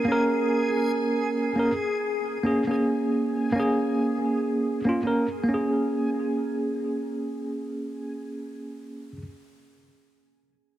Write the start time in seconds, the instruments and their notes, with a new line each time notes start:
Already playing: synth texture G#4
0.05 tine electric piano A#3 C#4
0.12 tine electric piano A#4
1.56 tine electric piano A#3 C#4 A#4
2.43 tine electric piano A#3 C#4 G#4
2.67 tine electric piano A#3 C#4 G#4
3.52 tine electric piano A#3 C#4
3.60 tine electric piano G#4
4.85 tine electric piano A#3 C#4 F4
5.03 tine electric piano A#3 C#4 A#4
5.44 tine electric piano A#3
5.49 tine electric piano C#4
5.54 tine electric piano G#4